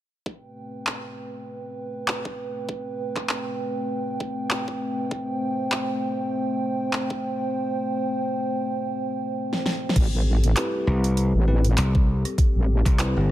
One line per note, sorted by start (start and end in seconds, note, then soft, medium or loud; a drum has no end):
0.26 9.92 A3 medium
0.26 9.92 C4 medium
0.26 5.07 B4 medium
0.26 9.92 G5 medium
0.26 kick loud
0.87 clap loud
2.08 clap loud
2.25 kick medium
2.69 kick loud
3.16 kick loud
3.16 clap soft
3.29 clap loud
4.20 kick loud
4.51 clap loud
4.68 kick medium
5.11 9.92 C5 medium
5.11 kick loud
5.72 clap loud
6.93 clap loud
7.10 kick loud
9.53 snare soft
9.66 snare medium
9.89 snare medium
9.96 10.55 A1 medium
9.96 13.31 G3 medium
9.96 13.31 C4 medium
9.96 13.31 G4 medium
9.96 13.31 A4 medium
9.96 kick loud
9.96 closed hi-hat medium
9.96 crash medium
10.44 closed hi-hat medium
10.57 11.45 C4 medium
10.57 11.45 E4 medium
10.57 11.45 G4 medium
10.57 11.45 B4 medium
10.57 clap loud
10.57 closed hi-hat medium
10.87 11.32 C2 medium
11.04 closed hi-hat medium
11.17 closed hi-hat medium
11.35 11.76 A1 medium
11.48 11.66 C4 medium
11.48 11.66 E4 medium
11.48 11.66 G4 medium
11.48 11.66 B4 medium
11.64 closed hi-hat medium
11.78 12.23 C2 medium
11.78 clap loud
11.78 closed hi-hat medium
11.95 kick loud
12.25 cross-stick soft
12.25 closed hi-hat medium
12.38 kick loud
12.38 closed hi-hat medium
12.56 12.83 A1 medium
12.86 13.13 C2 medium
12.86 kick loud
12.86 cross-stick medium
12.86 clap soft
12.86 closed hi-hat medium
12.99 13.31 C4 medium
12.99 13.31 E4 medium
12.99 13.31 G4 medium
12.99 13.31 B4 medium
12.99 clap loud
12.99 closed hi-hat medium
13.16 13.27 G1 medium